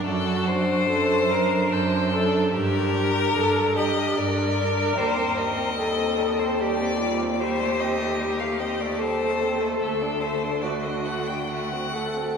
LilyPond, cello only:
\new Staff \with { instrumentName = "Cello" } { \clef bass \time 3/4 \key d \phrygian \tempo 4 = 73 fis,4 fis,4 fis,4 | g,4 g,4 g,4 | ees,2.~ | ees,2. |
d,2. | }